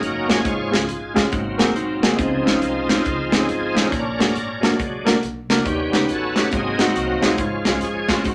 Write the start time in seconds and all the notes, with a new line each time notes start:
Already playing: G#2 F#3 A#3 C#4 D#4 A#4
0.01 F#1, closed hi-hat
0.28 G1 A#3 C#4 F#4 G#4 C#5, snare, closed hi-hat
0.32 F4
0.44 G#1 G#2 F3 G#3 C#4, kick, closed hi-hat
0.71 C#2 G#3 C#4 F4 G#4, snare, closed hi-hat
0.89 A#1, closed hi-hat
1.14 G#3 C#4 F4 G#4, kick, snare, closed hi-hat
1.30 G#1 G#2 F#3 A#3 C4, kick, closed hi-hat
1.58 A#3 C4 F#4 G#4 A#4, snare, closed hi-hat
1.76 B1 D#4 C5, closed hi-hat
2.02 C2 A#3 C4 F#4 G#4, snare, closed hi-hat
2.16 C#2 C#3 F3 G#3 C4 D#4, kick, closed hi-hat
2.44 A#1 C4 C#4 D#4 F4, snare, closed hi-hat
2.59 C2 G#3 C4 F4, closed hi-hat
2.89 C4 C#4 D#4 F4, snare, closed hi-hat
3.03 C#2 G#3 C4 F4, kick, closed hi-hat
3.32 C4 C#4 D#4 G#4, snare, closed hi-hat
3.45 C4 F4 G#4
3.49 G#1, closed hi-hat
3.74 A1 C4 C#4 D#4 G#4, snare, closed hi-hat
3.88 A#2 C#4 D4 A#4
3.92 A#1, kick, closed hi-hat
4.19 F#1 A#3 D4 F#4 G#4, snare, closed hi-hat
4.35 G#1, closed hi-hat
4.61 F#3 G#3 A#3 D4 F#4 A#4, snare, closed hi-hat
4.79 A#1, kick, closed hi-hat
5.05 A#3 D4 F#4 A#4, snare, closed hi-hat
5.23 B1, closed hi-hat
5.50 C#2 A#3 D4 F#4 A#4, snare, closed hi-hat
5.64 D#2 D#3 G3 B3 C#4 G4, kick, closed hi-hat
5.92 C#2 B3 C#4 D#4 G4, snare, closed hi-hat
6.09 A1 C#4 F#4 A4, closed hi-hat
6.35 B3 C#4 D#4 G4, snare, closed hi-hat
6.52 G#1 G#2 F#3 A#3 C4 D#4 G#4, kick, closed hi-hat
6.78 G#3 C4 D#4 F#4, snare, closed hi-hat
6.82 C4 D#4 F#4
6.95 C2, closed hi-hat
7.21 D#2 G#3 C4 D#4 F4 F#4, snare, closed hi-hat
7.25 C#4
7.38 G#1 G#2 F3 G#3, kick, closed hi-hat
7.42 C#4
7.65 C2 G#3 C#4 F4 G#4, snare, closed hi-hat
7.81 A#1 G#4, closed hi-hat
8.08 G#3 C#4 F4 G#4, kick, snare, closed hi-hat
8.13 A#3 C4 F#4
8.24 G#1 G#2 F#3, kick, closed hi-hat
8.28 A#3 C4